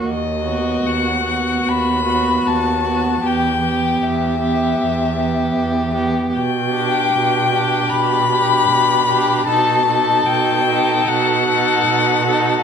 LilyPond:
<<
  \new Staff \with { instrumentName = "Violin" } { \time 4/4 \key e \minor \tempo 4 = 76 dis''4 fis''4 b''4 a''4 | g''4 e''2~ e''8 r8 | \key g \major g''2 b''2 | a''4 g''4 fis''2 | }
  \new Staff \with { instrumentName = "Violin" } { \time 4/4 \key e \minor r8 fis'4 fis'4 fis'4 fis'8 | g'8 g'4 g'4 g'4 g'8 | \key g \major r8 g'4 g'4 g'4 g'8 | a'8 a'4 a'4 a'4 a'8 | }
  \new Staff \with { instrumentName = "Viola" } { \time 4/4 \key e \minor r8 b4 b4 b4 b8 | b8 b4 b4 b4 b8 | \key g \major r8 d'4 d'4 d'4 d'8 | dis'8 dis'4 dis'4 dis'4 dis'8 | }
  \new Staff \with { instrumentName = "Cello" } { \clef bass \time 4/4 \key e \minor dis,4 dis,4 dis,4 dis,4 | e,4 e,4 e,4 e,4 | \key g \major b,4 b,4 b,4 b,4 | b,4 b,4 b,4 b,4 | }
>>